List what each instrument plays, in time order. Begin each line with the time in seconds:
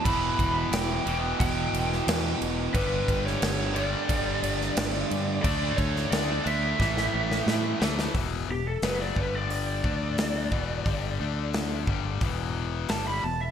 0.05 fingered electric bass E1, distorted electric guitar E2 B2 E3, lead electric guitar B5, kick, crash
0.39 fingered electric bass E1, kick, crash
0.72 fingered electric bass E1, lead electric guitar G5, snare, crash
1.05 fingered electric bass E1, distorted electric guitar E2 B2 E3, crash
1.40 fingered electric bass E1, lead electric guitar G5, kick, crash
1.73 fingered electric bass E1, crash
1.93 snare
2.07 fingered electric bass E2, snare, crash
2.42 fingered electric bass E1, crash
2.73 fingered electric bass G1, distorted electric guitar G2 D3 G3, lead electric guitar B4, kick, crash
3.08 fingered electric bass G1, kick, crash
3.25 lead electric guitar C#5, snare
3.42 fingered electric bass G1, snare, crash
3.73 distorted electric guitar G2 D3 G3, lead electric guitar C#5, crash
3.86 lead electric guitar D5
4.09 fingered electric bass G1, kick, crash
4.43 fingered electric bass G1, crash
4.61 snare
4.77 fingered electric bass G1, snare, crash
5.11 fingered electric bass G2, crash
5.42 fingered electric bass D2, distorted electric guitar D3 A3 D4, lead electric guitar D5, kick, crash
5.77 fingered electric bass D2, lead electric guitar C#5, kick, crash
5.96 snare
6.11 fingered electric bass D2, lead electric guitar D5, snare, crash
6.44 fingered electric bass D2, distorted electric guitar A3 D4, lead electric guitar E5, crash
6.48 distorted electric guitar D3
6.79 fingered electric bass A1, distorted electric guitar A2 E3 A3, kick, snare
6.97 snare
7.14 fingered electric bass A1
7.31 snare
7.46 fingered electric bass A2, snare
7.80 fingered electric bass D2, distorted electric guitar A2 E3 A3, snare
7.99 snare
8.14 fingered electric bass E1, distorted electric guitar E2 B2 E3, kick, open hi-hat
8.48 fingered electric bass E1, distorted electric guitar E2 B2, lead electric guitar G4
8.68 lead electric guitar A4
8.82 fingered electric bass F#1, distorted electric guitar F#2 C#3 F#3, lead electric guitar B4, snare, open hi-hat
9.02 lead electric guitar D5
9.16 fingered electric bass G1, distorted electric guitar G2 D3 G3, lead electric guitar B4, kick
9.35 lead electric guitar D5
9.50 lead electric guitar D5, open hi-hat
9.84 fingered electric bass D2, distorted electric guitar D3 A3 D4, kick
10.18 snare, open hi-hat
10.51 fingered electric bass E1, distorted electric guitar E2 B2 E3, kick
10.85 fingered electric bass G1, distorted electric guitar G2 D3 G3, kick, open hi-hat
11.20 fingered electric bass D2, distorted electric guitar D3 A3 D4
11.54 snare, open hi-hat
11.87 fingered electric bass G1, distorted electric guitar G2 D3 G3, kick
12.21 fingered electric bass E1, distorted electric guitar E2 B2 E3, kick, open hi-hat
12.89 fingered electric bass G1, distorted electric guitar G2 D3 G3, lead electric guitar A5, snare, open hi-hat
13.07 lead electric guitar B5
13.23 fingered electric bass E1, distorted electric guitar E2 B2, lead electric guitar A5
13.41 lead electric guitar E5